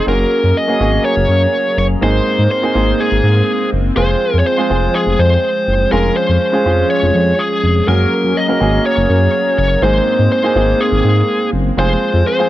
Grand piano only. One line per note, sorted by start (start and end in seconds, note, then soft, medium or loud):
0.06 0.65 A#3 medium
0.06 0.65 C#4 medium
0.06 0.65 F#4 medium
0.06 0.65 G#4 medium
0.68 0.78 A#3 medium
0.68 0.78 C#4 medium
0.68 0.79 F#4 medium
0.68 0.79 G#4 medium
0.80 1.73 A#3 medium
0.80 1.73 C#4 medium
0.80 1.73 F#4 medium
0.80 1.73 G#4 medium
2.01 2.71 G#2 medium
2.01 2.60 A#3 medium
2.01 2.60 C4 medium
2.01 2.60 D#4 medium
2.01 2.60 G#4 medium
2.62 2.73 A#3 medium
2.62 2.74 C4 medium
2.62 2.74 D#4 medium
2.62 2.74 G#4 medium
2.75 3.68 A#3 medium
2.75 3.68 C4 medium
2.75 3.68 D#4 medium
2.75 3.68 G#4 medium
3.96 4.55 G#3 medium
3.96 4.55 C4 medium
3.96 4.55 F4 medium
3.96 4.55 G#4 medium
4.57 4.68 G#3 medium
4.57 4.68 C4 medium
4.57 4.69 F4 medium
4.57 4.69 G#4 medium
4.69 5.63 G#3 medium
4.69 5.63 C4 medium
4.69 5.63 F4 medium
4.69 5.63 G#4 medium
5.91 6.50 G#3 medium
5.91 6.50 C#4 medium
5.91 6.50 F4 medium
5.91 6.50 G#4 medium
6.52 6.63 G#3 medium
6.52 6.64 C#4 medium
6.52 6.65 F4 medium
6.52 6.65 G#4 medium
6.65 7.58 G#3 medium
6.65 7.58 C#4 medium
6.65 7.58 F4 medium
6.65 7.59 G#4 medium
7.87 8.45 A#3 medium
7.87 8.45 C#4 medium
7.87 8.46 F#4 medium
7.87 8.46 G#4 medium
8.48 8.58 A#3 medium
8.48 8.59 C#4 medium
8.48 8.59 F#4 medium
8.48 8.61 A#4 medium
8.59 9.53 A#3 medium
8.59 9.53 C#4 medium
8.59 9.53 F#4 medium
8.59 9.53 G#4 medium
9.82 10.52 G#2 medium
9.82 10.40 A#3 medium
9.82 10.40 C4 medium
9.82 10.41 D#4 medium
9.82 10.41 G#4 medium
10.43 10.54 A#3 medium
10.43 10.54 C4 medium
10.43 10.54 D#4 medium
10.43 10.55 G#4 medium
10.55 11.48 A#3 medium
10.55 11.48 C4 medium
10.55 11.49 D#4 medium
10.55 11.49 G#4 medium
11.77 12.35 G#3 medium
11.77 12.36 C4 medium
11.77 12.36 F4 medium
11.77 12.36 G#4 medium
12.39 12.49 G#3 medium
12.39 12.49 C4 medium
12.39 12.49 F4 medium
12.39 12.49 G#4 medium